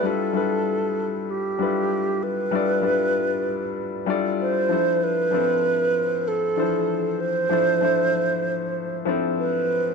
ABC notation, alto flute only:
X:1
M:4/4
L:1/8
Q:1/4=96
K:Gmix
V:1 name="Alto flute"
A4 G3 B- | B4- B z c2 | B4 A3 c- | c4- c z B2 |]